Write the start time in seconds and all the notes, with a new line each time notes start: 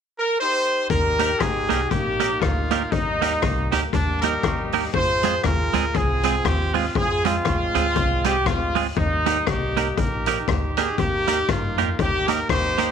0.19 A#4
0.40 D#4 G4 C5
0.90 D#2 D#4 G4 A#4, kick, closed hi-hat
1.19 A#3 D#4 G4 A#4, closed hi-hat
1.39 D2 D#4 G#4, muted clean electric guitar stroke, kick, cross-stick, closed hi-hat
1.69 C2 A#3 D#4 G4 A#4, closed hi-hat
1.90 A#1 A#3 D#4 G4, kick, closed hi-hat
2.20 A#3 D#4 G4 A#4, closed hi-hat
2.41 D2 A#3 F4, kick, cross-stick, closed hi-hat
2.71 A#3 D#4 G4 A#4, closed hi-hat
2.91 D#2 G3 A#3 D#4, kick, closed hi-hat
3.22 A#3 D#4 G4 A#4, closed hi-hat
3.42 C2, muted clean electric guitar stroke, kick, cross-stick, closed hi-hat
3.71 D2 A#3 D#4 G4 A#4, closed hi-hat
3.93 D#2 G3 A#3 D4, muted clean electric guitar stroke, kick, closed hi-hat
4.22 A#3 D#4 G4 A#4, closed hi-hat
4.43 D#2, kick, cross-stick, closed hi-hat
4.72 A#3 D#4 G4 A#4, open hi-hat
4.94 F2 F4 G#4 C5, kick, closed hi-hat
5.23 G#3 C4 F4 G#4, closed hi-hat
5.43 D#2 F4 A#4, muted clean electric guitar stroke, kick, cross-stick, closed hi-hat
5.73 D2 G#3 C4 F4 G#4, closed hi-hat
5.95 C2 C4 F4 G#4, muted clean electric guitar stroke, kick, closed hi-hat
6.23 G#3 C4 F4 G#4, closed hi-hat
6.45 D#2 G4, kick, cross-stick, closed hi-hat
6.74 G#3 C4 F4 G#4, open hi-hat
6.95 F2 C4 F4 G#4, kick, closed hi-hat
7.25 G#3 C4 F4 G#4, closed hi-hat
7.45 D#2, muted clean electric guitar stroke, kick, cross-stick, closed hi-hat
7.75 D2 G#3 C4 F4 G#4, closed hi-hat
7.96 C2, muted clean electric guitar stroke, kick, closed hi-hat
8.24 G#3 C4 F4 G4 G#4, closed hi-hat
8.46 D2 G#3 C4 F4, kick, cross-stick, closed hi-hat
8.75 G#3 C4 F4 G#4, open hi-hat
8.97 D#2 G3 A#3 D#4, kick, closed hi-hat
9.26 A#3 D#4 G4 A#4, closed hi-hat
9.47 C2 A#3 D#4 G4, muted clean electric guitar stroke, kick, cross-stick, closed hi-hat
9.77 A#3 D#4 G4 A#4, closed hi-hat
9.98 A#1 D#4 G4 A#4, muted clean electric guitar stroke, kick, closed hi-hat
10.26 A#3 D#4 G4 A#4, closed hi-hat
10.48 D2, kick, cross-stick, closed hi-hat
10.77 A#3 D#4 G4 G#4 A#4, closed hi-hat
10.98 D#2 A#3 D#4 G4, kick, closed hi-hat
11.27 A#3 D#4 G4 A#4, closed hi-hat
11.48 G2 A#3 F4, muted clean electric guitar stroke, kick, cross-stick, closed hi-hat
11.78 F2 A#3 D#4 G4 A#4, closed hi-hat
11.99 D#2 A#3 D#4 G4, muted clean electric guitar stroke, kick, closed hi-hat
12.28 A#3 D#4 G4 A#4, closed hi-hat
12.49 D#2 D#4 G4 C5, kick, cross-stick, closed hi-hat
12.78 A#3 D#4 G4 A#4, closed hi-hat